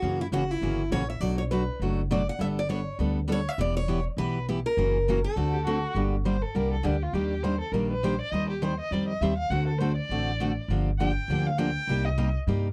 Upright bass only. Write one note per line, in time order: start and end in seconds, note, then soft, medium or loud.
0.02 0.26 F#2 medium
0.32 0.57 F#1 medium
0.61 0.87 G1 medium
0.91 1.16 A#1 medium
1.21 1.68 B1 medium
1.80 2.27 F#1 medium
2.39 2.86 G1 medium
2.99 3.46 D2 medium
3.58 4.05 E1 medium
4.17 4.64 B1 medium
4.77 5.24 F#1 medium
5.36 5.83 D2 medium
5.95 6.42 G1 medium
6.55 6.80 C2 medium
6.84 7.09 D2 medium
7.13 7.61 D#2 medium
7.72 8.20 A#1 medium
8.32 8.79 D#2 medium
8.91 9.16 F2 medium
9.21 9.46 D#2 medium
9.50 9.98 D2 medium
10.09 10.57 A1 medium
10.68 11.16 G1 medium
11.28 11.76 D2 medium
11.87 12.35 C2 medium
12.47 12.73 G2 medium